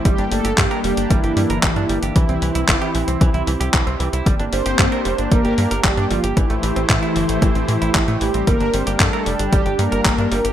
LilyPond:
<<
  \new Staff \with { instrumentName = "Analog polysynth" } { \time 4/4 \key g \dorian \tempo 4 = 114 <g g'>8 <a a'>8 <g g'>8 <g g'>8 <e e'>2 | <e e'>2. r4 | r8 <c' c''>4. <bes bes'>4 <g g'>8 <f f'>8 | <e e'>2.~ <e e'>8 <g g'>8 |
<bes bes'>8 <c' c''>16 <bes bes'>16 <a a'>8. <g g'>8. <bes bes'>4. | }
  \new Staff \with { instrumentName = "Analog synth pad" } { \time 4/4 \key g \dorian << { r1 | g'1~ | g'1 | <a c''>1 |
r1 | } \\ { <bes d' g'>1 | <c' e'>1 | <bes d'>1 | e'1 |
<g d'>1 | } >> }
  \new Staff \with { instrumentName = "Clean electric guitar" } { \clef bass \time 4/4 \key g \dorian g16 d'16 g16 g'16 g16 bes'16 g16 d'16 g16 g'16 g16 bes'16 g16 d'16 g16 g'16 | e16 c'16 e16 e'16 e16 g'16 e16 c'16 e16 e'16 e16 g'16 e16 c'16 e16 e'16 | g16 d'16 g16 g'16 g16 bes'16 g16 d'16 g16 g'16 g16 bes'16 g16 d'16 g16 g'16 | e16 a16 e16 c'16 e16 e'16 e16 a16 e16 c'16 e16 e'16 e16 a16 e16 c'16 |
g16 d'16 g16 g'16 g16 bes'16 g16 d'16 g16 g'16 g16 bes'16 g16 d'16 g16 g'16 | }
  \new Staff \with { instrumentName = "Analog synth bass" } { \clef bass \time 4/4 \key g \dorian g,,16 g,,16 g,,16 g,,16 g,16 r16 f,,16 g,,16 g,,16 g,,16 g,16 g,,16 g,,16 g,16 g,,16 g,,16 | c,16 c,16 c,16 c,16 g,,16 r16 bes,,16 c,16 c,16 c,16 c,16 c,16 c,16 c,16 c,16 c,16 | g,,16 g,,16 g,,16 g,,16 g,16 r16 f,,16 g,,16 g,,16 g,,16 g,16 g,,16 g,,16 g,16 g,,16 g,,16 | a,,16 a,,16 a,,16 a,,16 a,16 r16 g,,16 a,,16 a,,16 a,,16 a,16 a,,16 a,,16 a,16 a,,16 a,,16 |
g,,16 g,,16 g,,16 g,,16 g,16 r16 f,,16 g,,16 g,,16 g,,16 g,16 g,,16 g,,16 g,16 g,,16 g,,16 | }
  \new DrumStaff \with { instrumentName = "Drums" } \drummode { \time 4/4 <hh bd>16 hh16 hho16 hh16 <hc hh bd>16 hh16 hho16 hh16 <hh bd>16 hh16 hho16 hh16 <hc hh bd>16 hh16 hho16 hh16 | <hh bd>16 hh16 hho16 hh16 <hc hh bd>16 hh16 hho16 hh16 <hh bd>16 hh16 hho16 hh16 <hc hh bd>16 hh16 hho16 hh16 | <hh bd>16 hh16 hho16 hh16 <hc hh bd>16 hh16 hho16 hh16 <hh bd>16 hh16 hho16 hh16 <hc hh bd>16 hh16 hho16 hh16 | <hh bd>16 hh16 hho16 hh16 <hc hh bd>16 hh16 hho16 hh16 <hh bd>16 hh16 hho16 hh16 <hc hh bd>16 hh16 hho16 hh16 |
<hh bd>16 hh16 hho16 hh16 <hc hh bd>16 hh16 hho16 hh16 <hh bd>16 hh16 hho16 hh16 <hc hh bd>16 hh16 hho16 hh16 | }
>>